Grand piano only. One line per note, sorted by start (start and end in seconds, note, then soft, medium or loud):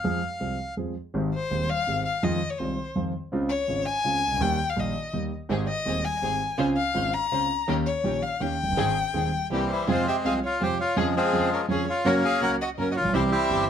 0.04 0.19 F2 medium
0.04 0.19 F3 medium
0.04 0.19 G#3 soft
0.04 0.19 C4 medium
0.04 0.19 G#4 medium
0.40 0.56 C2 soft
0.40 0.56 C3 soft
0.40 0.55 F3 soft
0.40 0.56 G#3 soft
0.40 0.56 C4 soft
0.40 0.56 G#4 soft
0.77 0.93 F2 soft
0.77 0.93 F3 soft
0.77 0.93 G#3 soft
0.77 0.93 C4 soft
0.77 0.93 G#4 soft
1.14 1.29 G#1 medium
1.14 1.30 G#2 medium
1.14 1.29 D#3 medium
1.14 1.30 G#3 medium
1.14 1.30 C4 medium
1.14 1.30 G4 medium
1.51 1.66 D#1 medium
1.51 1.66 D#2 medium
1.51 1.66 D#3 soft
1.51 1.66 G#3 soft
1.51 1.66 C4 soft
1.51 1.66 G4 medium
1.87 2.03 G#1 medium
1.87 2.02 G#2 medium
1.87 2.02 D#3 soft
1.87 2.02 G#3 soft
1.87 2.03 C4 soft
1.87 2.03 G4 medium
2.23 2.38 F2 medium
2.23 2.38 D#3 medium
2.23 2.39 F3 medium
2.23 2.39 G#3 medium
2.23 2.39 C4 medium
2.23 2.39 F4 medium
2.59 2.75 C2 medium
2.59 2.75 C3 medium
2.59 2.75 D#3 soft
2.59 2.75 G#3 soft
2.59 2.75 C4 soft
2.59 2.75 F4 medium
2.95 3.11 F2 medium
2.95 3.11 D#3 soft
2.95 3.11 F3 medium
2.95 3.11 G#3 soft
2.95 3.11 C4 soft
2.95 3.11 F4 medium
3.32 3.48 C#2 medium
3.32 3.48 C#3 medium
3.32 3.48 G#3 medium
3.32 3.48 C4 medium
3.32 3.48 F4 medium
3.68 3.83 G#1 medium
3.68 3.84 G#2 medium
3.68 3.83 C#3 soft
3.68 3.84 G#3 soft
3.68 3.84 C4 soft
3.68 3.84 F4 medium
4.04 4.20 C#2 medium
4.04 4.20 C#3 medium
4.04 4.20 G#3 soft
4.04 4.20 C4 soft
4.04 4.20 F4 medium
4.27 4.32 C2 soft
4.32 4.37 C#2 medium
4.37 4.41 D2 medium
4.37 4.56 D#2 medium
4.37 4.57 D#3 medium
4.41 4.57 G3 medium
4.41 4.57 A#3 medium
4.41 4.57 G4 medium
4.76 4.92 A#1 medium
4.76 4.92 A#2 medium
4.76 4.92 D#3 soft
4.76 4.93 G3 soft
4.76 4.92 A#3 soft
4.76 4.93 G4 medium
5.13 5.29 D#2 medium
5.13 5.29 D#3 medium
5.13 5.29 G3 soft
5.13 5.29 A#3 soft
5.13 5.29 G4 soft
5.49 5.65 G#1 medium
5.49 5.65 G#2 medium
5.49 5.65 D#3 medium
5.49 5.65 G#3 medium
5.49 5.65 C4 medium
5.49 5.65 G4 medium
5.85 6.02 D#1 medium
5.85 6.02 D#2 medium
5.85 6.01 D#3 medium
5.85 6.02 G#3 soft
5.85 6.02 C4 soft
5.85 6.02 G4 medium
6.22 6.38 G#1 medium
6.22 6.38 G#2 medium
6.22 6.38 D#3 soft
6.22 6.38 G#3 soft
6.22 6.38 C4 soft
6.22 6.38 G4 soft
6.58 6.74 C#2 medium
6.58 6.74 C#3 medium
6.58 6.74 G#3 medium
6.58 6.74 C4 medium
6.58 6.74 F4 medium
6.94 7.10 G#1 medium
6.94 7.10 G#2 medium
6.94 7.10 C#3 soft
6.94 7.10 G#3 soft
6.94 7.10 C4 soft
6.94 7.10 F4 medium
7.32 7.47 C#2 medium
7.32 7.47 C#3 medium
7.32 7.47 G#3 soft
7.32 7.47 C4 soft
7.32 7.47 F4 medium
7.68 7.84 D#2 medium
7.68 7.83 D#3 medium
7.68 7.83 A#3 medium
7.68 7.83 C#4 medium
7.68 7.84 G4 medium
8.03 8.20 A#1 medium
8.03 8.19 A#2 medium
8.03 8.19 D#3 soft
8.03 8.19 A#3 soft
8.03 8.20 C#4 soft
8.03 8.19 G4 medium
8.40 8.56 D#2 medium
8.40 8.56 D#3 medium
8.40 8.56 A#3 soft
8.40 8.56 C#4 soft
8.40 8.56 G4 medium
8.63 8.68 F1 soft
8.68 8.72 F#1 medium
8.72 8.77 G1 medium
8.77 8.93 G#1 medium
8.77 8.93 G#2 medium
8.77 8.93 D#3 medium
8.77 8.92 G#3 medium
8.77 8.93 C4 medium
8.77 8.93 G#4 medium
9.14 9.29 D#1 medium
9.14 9.29 D#2 medium
9.14 9.29 D#3 soft
9.14 9.29 G#3 soft
9.14 9.29 C4 soft
9.14 9.29 G#4 medium
9.50 9.66 C2 medium
9.50 9.66 C3 medium
9.50 9.66 E3 soft
9.50 9.66 A#3 soft
9.50 9.66 C4 soft
9.50 9.66 G4 medium
9.88 10.03 F2 medium
9.88 10.03 C3 medium
9.88 10.03 F3 medium
9.88 10.03 G#3 medium
9.88 10.03 F4 medium
10.25 10.40 C2 medium
10.25 10.40 C3 medium
10.25 10.40 F3 soft
10.25 10.40 G#3 soft
10.25 10.40 F4 medium
10.61 10.76 F2 medium
10.61 10.76 C3 medium
10.61 10.76 F3 medium
10.61 10.76 G#3 soft
10.61 10.76 F4 medium
10.96 11.12 F2 medium
10.96 11.12 C#3 medium
10.96 11.12 F3 medium
10.96 11.12 G#3 medium
10.96 11.12 F4 medium
11.33 11.48 F2 medium
11.33 11.48 C#3 soft
11.33 11.48 F3 medium
11.33 11.48 G#3 soft
11.33 11.48 F4 medium
11.68 11.84 F2 medium
11.68 11.84 C#3 soft
11.68 11.84 F3 medium
11.68 11.84 G#3 soft
11.68 11.84 F4 medium
12.05 12.20 F#2 medium
12.05 12.20 C#3 medium
12.05 12.20 F#3 medium
12.05 12.20 A#3 medium
12.05 12.21 F#4 medium
12.41 12.57 C#2 medium
12.41 12.57 C#3 medium
12.41 12.56 F#3 medium
12.41 12.57 A#3 soft
12.41 12.57 F#4 medium
12.78 12.93 F#2 medium
12.78 12.93 C#3 soft
12.78 12.93 F#3 medium
12.78 12.93 A#3 soft
12.78 12.93 F#4 medium
13.01 13.05 A1 soft
13.01 13.09 A#1 medium
13.09 13.14 B1 medium
13.14 13.29 C2 medium
13.14 13.29 C3 medium
13.14 13.29 E3 medium
13.14 13.29 G3 medium
13.14 13.29 C4 medium
13.14 13.29 G4 medium
13.50 13.65 G1 medium
13.50 13.66 G2 medium
13.50 13.65 E3 medium
13.50 13.65 G3 soft
13.50 13.66 C4 soft
13.50 13.66 G4 medium